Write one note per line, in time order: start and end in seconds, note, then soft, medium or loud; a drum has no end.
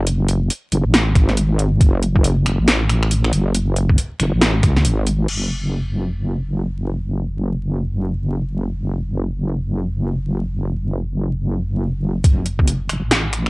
0.00 0.49 F#1 medium
0.07 closed hi-hat medium
0.29 closed hi-hat soft
0.50 closed hi-hat medium
0.72 0.84 F#1 medium
0.72 closed hi-hat soft
0.85 1.17 A1 medium
0.94 snare loud
0.94 closed hi-hat medium
1.15 1.80 G#1 loud
1.15 finger snap medium
1.15 kick loud
1.15 closed hi-hat soft
1.29 snare soft
1.37 closed hi-hat medium
1.59 closed hi-hat soft
1.81 2.45 F#1 medium
1.81 kick loud
1.81 closed hi-hat medium
2.03 closed hi-hat medium
2.16 kick medium
2.24 closed hi-hat medium
2.46 2.58 F#1 medium
2.46 finger snap medium
2.46 closed hi-hat medium
2.59 3.32 A1 medium
2.68 snare loud
2.68 closed hi-hat medium
2.89 finger snap medium
2.89 closed hi-hat medium
3.03 finger snap medium
3.11 closed hi-hat medium
3.24 finger snap medium
3.33 3.97 F#1 medium
3.33 closed hi-hat soft
3.55 closed hi-hat medium
3.76 closed hi-hat medium
3.90 kick medium
3.98 closed hi-hat medium
4.20 4.32 F#1 medium
4.20 finger snap medium
4.20 closed hi-hat medium
4.33 4.62 A1 medium
4.42 snare loud
4.42 closed hi-hat medium
4.63 4.86 C#2 medium
4.63 finger snap medium
4.63 kick loud
4.63 closed hi-hat medium
4.77 snare soft
4.85 5.27 G#1 medium
4.85 closed hi-hat medium
5.07 closed hi-hat medium
5.28 12.22 F#1 medium
5.28 crash medium
12.24 12.88 F#1 loud
12.24 kick loud
12.24 closed hi-hat medium
12.46 closed hi-hat medium
12.59 kick medium
12.68 closed hi-hat medium
12.89 13.02 F#1 medium
12.89 finger snap medium
12.89 closed hi-hat medium
13.03 13.50 A1 medium
13.11 snare loud
13.11 closed hi-hat medium
13.33 finger snap medium
13.33 closed hi-hat medium
13.46 finger snap medium